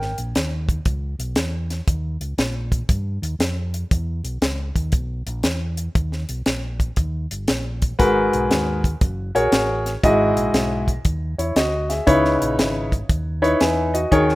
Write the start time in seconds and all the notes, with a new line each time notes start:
Already playing: G#1 A#4 G5
0.02 snare
0.18 A#1, closed hi-hat
0.35 D#2, snare, closed hi-hat
0.69 kick, closed hi-hat
0.85 C#2, kick, closed hi-hat
1.19 B1, closed hi-hat
1.36 E2, snare, closed hi-hat
1.70 snare, closed hi-hat
1.88 D#2, kick, closed hi-hat
2.20 C#2, closed hi-hat
2.38 A#1, snare, closed hi-hat
2.72 kick, closed hi-hat
2.89 G2, kick, closed hi-hat
3.22 D#2, closed hi-hat
3.39 F2, snare, closed hi-hat
3.74 closed hi-hat
3.91 E2, kick, closed hi-hat
4.24 B1, closed hi-hat
4.41 C#2, snare, closed hi-hat
4.76 D#2, kick, closed hi-hat
4.92 B1, kick, closed hi-hat
5.26 A#1, closed hi-hat
5.43 E2, snare, closed hi-hat
5.77 closed hi-hat
5.95 D#2, kick, closed hi-hat
6.12 snare
6.29 B1, closed hi-hat
6.46 A#1, snare, closed hi-hat
6.80 kick, closed hi-hat
6.96 D#2, kick, closed hi-hat
7.31 G1, closed hi-hat
7.48 A#1, snare, closed hi-hat
7.82 kick, closed hi-hat
7.99 G#1 G#2 F#4 G#4 A#4 B4, kick, closed hi-hat
8.33 B1, closed hi-hat
8.51 D#2, snare, closed hi-hat
8.84 kick, closed hi-hat
9.01 F#1, kick, closed hi-hat
9.35 A#1 F#4 G#4 A#4 C#5, closed hi-hat
9.51 A1, snare, closed hi-hat
9.86 snare, closed hi-hat
10.03 G#1 G#2 E4 F#4 G#4 D#5, kick, closed hi-hat
10.36 A#1, closed hi-hat
10.53 B1, snare, closed hi-hat
10.88 kick, closed hi-hat
11.05 D#2, kick, closed hi-hat
11.38 E2 E4 C#5, closed hi-hat
11.56 D2 F#4 D#5, snare, closed hi-hat
11.89 G#4 E5, snare, closed hi-hat
12.06 C#2 C#3 D#4 E4 B4 C#5, kick, closed hi-hat
12.25 snare
12.42 A#1, closed hi-hat
12.58 G#1, snare, closed hi-hat
12.92 kick, closed hi-hat
13.09 D#2, kick, closed hi-hat
13.42 D#4 E4 B4 C#5, closed hi-hat
13.61 E2 B4 G#5, snare, closed hi-hat
13.94 F#4 D#5, closed hi-hat
14.11 D#2 D#3 D#4 G#4 A#4 C#5, kick, closed hi-hat
14.29 snare